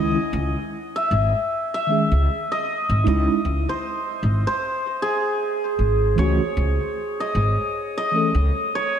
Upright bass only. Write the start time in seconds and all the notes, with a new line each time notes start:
Already playing: C#2
0.33 C#2
1.11 G#1
2.12 C#2
2.89 G#1
3.07 C#2
3.45 C#2
4.23 G#1
5.79 G#1
6.18 C#2
6.57 C#2
7.35 G#1
8.35 C#2